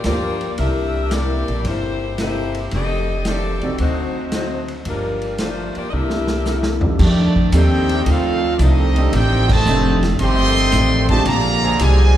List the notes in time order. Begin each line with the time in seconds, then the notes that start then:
0.04 D2 G2 F3 A#3 D4 F4 G4 C5 D5, snare, hi-hat pedal, ride
0.41 ride
0.58 C2 C3 A#3 D4 E4 G4 A4 A#4 E5, ride
1.11 C3 A#3 E4 G4 A4 D5, snare, hi-hat pedal, ride
1.48 A#1, ride
1.65 G1 C3 A#3 E4 G4 A4 C5, ride
2.18 C3 A#3 E4 G4 A4 C5, snare, hi-hat pedal, ride
2.55 ride
2.71 F1 F2 D#3 A3 C4 D4 G4 A4 D#5, ride
3.25 F2 D#3 A3 C4 D4 G4 A4 D5, snare, hi-hat pedal, ride
3.61 C2 C4 D#4 F#4 A4 D5, ride
3.78 D2 D3 F#3 A3 C4 D#4 F#4 C5, ride
4.32 D3 F#3 A3 C4 D#4 F#4 C5, snare, hi-hat pedal, ride
4.68 ride
4.85 G1 G2 F3 A#3 D4 F4 A#4, ride
4.89 G3
5.22 ride
5.38 G2 F3 A3 A#3 D4 F4 C5, snare, hi-hat pedal, ride
5.75 A#3 F4 G4 D5, muted upright bass stroke, ride
5.88 C3 D#5
5.93 C2 G3 A#3 D4 E4 G4 A4 A#4 E5
6.10 snare
6.27 snare
6.45 C3 A#3 E4 A4, snare, hi-hat pedal
6.63 snare
6.81 F3 C4 D4 D#4 G4 A4, floor tom
6.99 F2 D#3 A3 C4 D4 G4 A4 D5, kick, crash
7.36 kick
7.52 D#2 F2 D#3 A3 C4 D4 D#4 G4 A4, hi-hat pedal, ride
7.56 D#4 A4 C5 G5
7.88 D#3 A3 D4 G4, ride
8.04 D2 F2 D#3 A3 C4 F4 D#5, ride
8.09 D4 D#4 A4 C5 F5
8.57 C2 F2 D#3 A3 C4 D#4 D5, hi-hat pedal, ride
8.61 C4 D4 G4 A4 D#5
8.96 C4 D4 D#4 G4 A4, ride
9.12 A1 F2 D#3 A3 C4 D4 D#4 G4 A4 C5 G5, ride
9.49 C3 D#3 A3 G4 C5 D#5 A5, kick, crash
9.66 F1 F2 D#3 A3 C4 D4 D#4 G4 A4, hi-hat pedal
10.03 snare, ride
10.19 G1 F2 D#3 A3 C4 D4 D#4 G4 A4 D#5 G5 C6, ride
10.72 A1 F2 D#3 A3 D4, snare, hi-hat pedal, ride
11.09 C3 D#3 G#3 A3 C4 D4 F4 G4 C5 D#5 A5, kick, ride
11.25 A#1 A#2 D3 F3 G#3 A#3 D4 G4 G#4 D5 F5 A#5, ride
11.62 D3 G#3 C4 G#4
11.79 C2 A#2 D3 F3 G#3 D4 F4 G4 C5 D5 G#5, hi-hat pedal, ride